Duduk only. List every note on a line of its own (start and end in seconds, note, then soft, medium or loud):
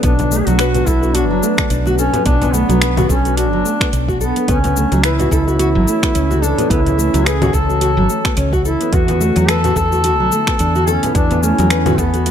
0.04 0.40 D4 medium
0.39 0.48 G#4 medium
0.47 0.88 F#4 loud
0.86 1.16 E4 medium
1.15 1.70 D4 medium
1.98 2.24 C#4 loud
2.25 2.55 D4 loud
2.53 3.09 B3 medium
3.09 3.39 C#4 medium
3.37 3.93 D4 medium
4.22 4.47 B3 medium
4.50 5.06 C#4 medium
5.05 5.32 E4 medium
5.32 6.44 E4 medium
6.43 6.72 D4 medium
6.70 7.28 E4 loud
7.26 7.56 G#4 loud
7.54 8.38 A4 loud
8.66 8.95 E4 medium
8.94 9.51 F#4 loud
9.49 9.76 A4 loud
9.77 10.89 A4 loud
10.88 11.15 C#4 medium
11.15 11.45 D4 loud
11.43 12.00 C#4 medium
11.98 12.31 B3 medium